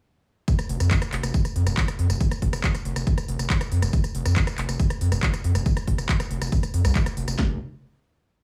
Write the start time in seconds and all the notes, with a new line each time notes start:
0.48 kick, closed hi-hat, tambourine
0.59 cross-stick, closed hi-hat, tambourine
0.69 F1, open hi-hat
0.80 F2, cross-stick, closed hi-hat, tambourine
0.91 kick, clap, closed hi-hat, tambourine
1.02 cross-stick, closed hi-hat, tambourine
1.13 F1, clap, open hi-hat
1.23 F1, cross-stick, closed hi-hat, tambourine
1.34 kick, closed hi-hat, tambourine
1.45 cross-stick, closed hi-hat, tambourine
1.56 F2, open hi-hat
1.67 F1, cross-stick, closed hi-hat, tambourine
1.77 kick, clap, closed hi-hat, tambourine
1.88 cross-stick, closed hi-hat, tambourine
1.99 F2, open hi-hat
2.10 F1, cross-stick, closed hi-hat, tambourine
2.21 kick, closed hi-hat, tambourine
2.31 cross-stick, closed hi-hat, tambourine
2.42 F1, kick, open hi-hat
2.53 F1, cross-stick, closed hi-hat, tambourine
2.64 kick, clap, closed hi-hat, tambourine
2.75 cross-stick, closed hi-hat, tambourine
2.85 F1, open hi-hat
2.96 F1, cross-stick, closed hi-hat, tambourine
3.07 kick, closed hi-hat, tambourine
3.18 cross-stick, closed hi-hat, tambourine
3.28 F1, open hi-hat
3.39 F1, cross-stick, closed hi-hat, tambourine
3.50 kick, clap, closed hi-hat, tambourine
3.61 cross-stick, closed hi-hat, tambourine
3.72 F2, open hi-hat
3.82 F1, cross-stick, closed hi-hat, tambourine
3.93 kick, closed hi-hat, tambourine
4.04 cross-stick, closed hi-hat, tambourine
4.15 F1, open hi-hat
4.25 F2, cross-stick, closed hi-hat, tambourine
4.36 kick, clap, closed hi-hat, tambourine
4.47 cross-stick, closed hi-hat, tambourine
4.58 F1, clap, open hi-hat
4.69 F1, cross-stick, closed hi-hat, tambourine
4.79 kick, closed hi-hat, tambourine
4.90 cross-stick, closed hi-hat, tambourine
5.01 F2, open hi-hat
5.12 F1, cross-stick, closed hi-hat, tambourine
5.23 kick, clap, closed hi-hat, tambourine
5.34 cross-stick, closed hi-hat, tambourine
5.44 F2, open hi-hat
5.55 F1, cross-stick, closed hi-hat, tambourine
5.66 kick, closed hi-hat, tambourine
5.77 cross-stick, closed hi-hat, tambourine
5.87 F1, kick, open hi-hat
5.98 F1, cross-stick, closed hi-hat, tambourine
6.09 kick, clap, closed hi-hat, tambourine
6.20 cross-stick, closed hi-hat, tambourine
6.31 F1, open hi-hat
6.41 F1, cross-stick, closed hi-hat, tambourine
6.52 kick, closed hi-hat, tambourine
6.63 cross-stick, closed hi-hat, tambourine
6.74 F2, open hi-hat
6.85 C2, cross-stick, closed hi-hat, tambourine
6.95 kick, clap, closed hi-hat, tambourine
7.06 cross-stick, closed hi-hat, tambourine
7.17 F1, open hi-hat
7.28 F1, cross-stick, closed hi-hat, tambourine
7.39 F1, kick, snare, clap